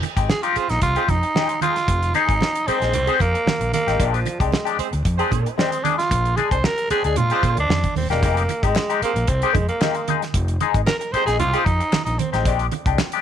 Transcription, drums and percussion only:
0.02 closed hi-hat medium
0.02 muted conga medium
0.17 kick loud
0.17 closed hi-hat medium
0.30 snare loud
0.30 high conga medium
0.43 closed hi-hat medium
0.56 closed hi-hat medium
0.69 snare soft
0.69 closed hi-hat soft
0.82 kick medium
0.82 closed hi-hat medium
0.82 muted conga soft
0.96 closed hi-hat soft
1.08 kick medium
1.08 closed hi-hat medium
1.08 muted conga medium
1.08 low conga medium
1.23 closed hi-hat soft
1.35 snare loud
1.35 high conga medium
1.49 closed hi-hat medium
1.61 closed hi-hat loud
1.61 high conga medium
1.76 snare soft
1.76 closed hi-hat soft
1.88 kick loud
1.88 closed hi-hat loud
2.03 closed hi-hat soft
2.14 closed hi-hat medium
2.14 muted conga medium
2.29 kick loud
2.29 closed hi-hat medium
2.41 snare loud
2.41 high conga medium
2.55 closed hi-hat medium
2.68 closed hi-hat medium
2.82 snare soft
2.82 closed hi-hat soft
2.93 closed hi-hat loud
2.93 muted conga soft
2.93 low conga medium
3.07 closed hi-hat soft
3.20 kick medium
3.20 closed hi-hat medium
3.20 muted conga medium
3.35 closed hi-hat soft
3.47 snare loud
3.47 high conga medium
3.61 closed hi-hat medium
3.73 closed hi-hat medium
3.73 high conga medium
3.88 snare soft
3.88 closed hi-hat soft
4.00 kick loud
4.00 closed hi-hat loud
4.14 closed hi-hat medium
4.26 closed hi-hat medium
4.26 muted conga medium
4.40 kick loud
4.40 closed hi-hat medium
4.52 snare loud
4.52 high conga medium
4.67 closed hi-hat medium
4.79 closed hi-hat medium
4.93 closed hi-hat soft
5.05 kick medium
5.05 closed hi-hat medium
5.19 closed hi-hat soft
5.31 kick medium
5.31 closed hi-hat medium
5.31 muted conga soft
5.31 low conga medium
5.46 closed hi-hat soft
5.58 snare loud
5.58 high conga medium
5.72 closed hi-hat medium
5.84 closed hi-hat medium
5.84 high conga medium
5.99 snare soft
5.99 closed hi-hat medium
6.11 kick loud
6.11 closed hi-hat loud
6.25 closed hi-hat medium
6.37 closed hi-hat medium
6.37 muted conga medium
6.51 kick medium
6.51 closed hi-hat medium
6.64 snare loud
6.64 high conga medium
6.78 closed hi-hat medium
6.90 closed hi-hat medium
7.04 closed hi-hat medium
7.16 closed hi-hat loud
7.16 muted conga soft
7.16 low conga medium
7.30 closed hi-hat medium
7.43 kick medium
7.43 closed hi-hat medium
7.43 muted conga medium
7.57 closed hi-hat soft
7.70 snare loud
7.70 high conga medium
7.83 kick medium
7.83 closed hi-hat medium
7.83 high conga medium
7.96 open hi-hat loud
7.96 high conga medium
8.11 snare soft
8.11 closed hi-hat soft
8.23 kick loud
8.23 closed hi-hat medium
8.37 closed hi-hat soft
8.49 closed hi-hat medium
8.49 muted conga medium
8.63 kick loud
8.63 closed hi-hat medium
8.76 snare loud
8.76 clap loud
8.76 high conga medium
8.90 closed hi-hat medium
9.02 closed hi-hat medium
9.16 closed hi-hat medium
9.27 kick loud
9.27 closed hi-hat medium
9.42 closed hi-hat soft
9.55 kick loud
9.55 closed hi-hat medium
9.55 muted conga medium
9.55 low conga medium
9.69 closed hi-hat medium
9.82 snare loud
9.82 clap loud
9.82 high conga medium
9.95 closed hi-hat medium
10.08 closed hi-hat medium
10.08 high conga medium
10.22 snare soft
10.22 closed hi-hat soft
10.34 kick loud
10.34 closed hi-hat loud
10.48 closed hi-hat medium
10.61 closed hi-hat medium
10.61 muted conga medium
10.74 kick loud
10.74 closed hi-hat medium
10.87 snare loud
10.87 clap loud
10.87 high conga medium
11.01 closed hi-hat medium
11.14 closed hi-hat medium
11.28 snare soft
11.28 closed hi-hat medium
11.39 closed hi-hat medium
11.39 low conga medium
11.54 closed hi-hat soft
11.66 kick loud
11.66 closed hi-hat medium
11.66 muted conga medium
11.81 closed hi-hat medium
11.93 snare loud
11.93 clap loud
11.93 high conga medium
12.06 closed hi-hat medium
12.19 closed hi-hat loud
12.19 high conga medium
12.33 snare soft
12.33 closed hi-hat soft
12.45 kick loud
12.45 closed hi-hat medium
12.59 closed hi-hat soft
12.72 closed hi-hat medium
12.72 muted conga medium
12.86 kick loud
12.86 closed hi-hat medium
12.98 snare loud
12.98 clap loud
12.98 high conga medium
13.12 closed hi-hat medium

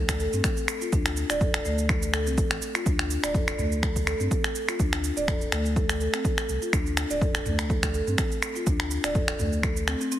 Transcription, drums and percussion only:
0.09 finger snap loud
0.09 kick medium
0.09 shaker loud
0.20 shaker medium
0.33 shaker medium
0.44 finger snap medium
0.44 kick loud
0.44 shaker loud
0.57 shaker medium
0.68 finger snap medium
0.68 shaker loud
0.81 shaker medium
0.93 kick loud
0.93 shaker medium
1.06 finger snap medium
1.06 shaker medium
1.17 shaker loud
1.30 finger snap medium
1.30 shaker loud
1.41 kick loud
1.41 mid tom medium
1.41 shaker medium
1.54 finger snap medium
1.54 shaker medium
1.65 shaker medium
1.78 shaker medium
1.89 finger snap medium
1.89 kick loud
1.89 shaker medium
2.02 shaker medium
2.14 finger snap medium
2.14 shaker medium
2.27 shaker medium
2.38 kick loud
2.38 shaker loud
2.51 finger snap medium
2.51 shaker medium
2.62 shaker medium
2.75 finger snap medium
2.75 shaker medium
2.86 kick loud
2.86 shaker medium
2.99 finger snap medium
2.99 shaker medium
3.10 shaker medium
3.24 finger snap medium
3.24 shaker medium
3.34 kick loud
3.34 mid tom medium
3.34 shaker medium
3.48 finger snap medium
3.48 shaker medium
3.59 mid tom medium
3.59 shaker medium
3.72 shaker medium
3.83 finger snap medium
3.83 kick loud
3.83 shaker medium
3.96 kick medium
3.96 shaker medium
4.07 finger snap medium
4.07 shaker medium
4.20 shaker medium
4.31 kick loud
4.31 shaker medium
4.44 finger snap medium
4.44 shaker medium
4.55 shaker medium
4.69 finger snap medium
4.69 shaker medium
4.80 kick loud
4.80 shaker medium
4.93 finger snap medium
4.93 shaker medium
5.04 shaker medium
5.17 shaker medium
5.28 finger snap medium
5.28 kick loud
5.28 mid tom medium
5.28 shaker medium
5.41 shaker medium
5.52 finger snap medium
5.52 shaker medium
5.65 shaker medium
5.76 kick loud
5.76 shaker medium
5.89 finger snap medium
5.89 shaker medium
6.01 shaker medium
6.14 finger snap medium
6.14 shaker medium
6.25 kick loud
6.25 shaker medium
6.38 finger snap medium
6.38 shaker soft
6.49 shaker medium
6.62 shaker medium
6.73 finger snap medium
6.73 kick loud
6.73 shaker medium
6.86 shaker medium
6.97 finger snap medium
6.97 shaker medium
7.10 shaker medium
7.21 kick loud
7.21 mid tom medium
7.21 shaker soft
7.35 finger snap medium
7.35 shaker medium
7.46 mid tom medium
7.46 shaker soft
7.59 finger snap medium
7.59 shaker medium
7.70 kick loud
7.70 shaker soft
7.83 finger snap medium
7.83 kick medium
7.83 shaker medium
7.94 shaker soft
8.07 shaker soft
8.18 finger snap medium
8.18 kick loud
8.18 shaker medium
8.32 shaker soft
8.42 finger snap medium
8.42 shaker medium
8.56 shaker medium
8.67 kick loud
8.67 shaker medium
8.80 finger snap medium
8.80 shaker medium
8.91 shaker medium
9.04 finger snap medium
9.04 shaker medium
9.15 kick loud
9.15 mid tom medium
9.15 shaker soft
9.28 finger snap medium
9.28 shaker medium
9.39 mid tom medium
9.39 shaker medium
9.52 shaker medium
9.63 finger snap medium
9.63 kick loud
9.63 shaker medium
9.77 shaker medium
9.88 finger snap loud
9.88 shaker medium
10.01 shaker medium
10.12 shaker medium

